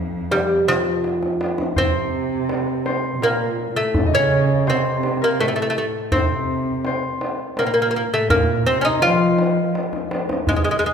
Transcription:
Already playing: F2
0.31 G3, tombak tek
0.68 F3, tombak tek
1.04 tombak tek
1.23 tombak ka
1.41 tombak tek
1.58 tombak ka
1.76 C3 C4 C5, tombak dum
2.49 tombak tek
2.86 C5, tombak tek
3.15 C3
3.21 A#2 A#3 A#4, tombak tek
3.59 tombak ka
3.69 A#2
3.76 A2 A3 A4
3.94 tombak dum
4.06 D#5
4.13 C#3 C#4 C#5
4.67 C3 C4 C5, tombak tek
5.03 tombak tek
5.22 A#3 A#4
5.33 A#4
5.40 A2 A3 A4, tombak tek
5.48 A3
5.56 A3
5.62 A3
5.70 A3
5.76 A3, tombak ka
6.12 C3 C4 C5, tombak dum
6.85 C5, tombak tek
7.21 tombak tek
7.57 A#2 A#3 A#4, tombak tek
7.67 A#3
7.74 A#3
7.82 A#3
7.91 A#3, tombak ka
7.96 A#3
8.12 A2 A3 A4
8.30 A#2 A#3 A#4, tombak dum
8.66 C3 C4 C5, tombak ka
8.81 C#4 D#4
8.87 D#5
9.02 F3 F4 F5, tombak tek
9.39 tombak tek
9.75 tombak tek
9.93 tombak ka
10.11 tombak tek
10.29 tombak ka
10.47 G#3, tombak dum
10.56 G#3
10.64 G#3
10.71 G#3
10.79 G#3
10.84 G#3, tombak ka

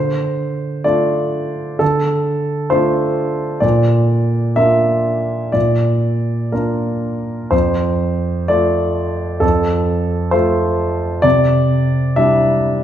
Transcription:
Already playing: D3 C5
0.84 A3 D4 F4 D5
1.79 D3 A4
2.70 A3 D4 F4 C5
3.60 A#2 D5
4.56 A#3 D4 F4 E5
5.52 A#2 D5
6.52 A#3 D4 F4 A#4
7.51 F2 C5
8.48 A3 F4 D5
9.40 F2 A4
10.31 A3 F4 C5
11.22 C3 D5
12.16 G3 D4 E4 E5

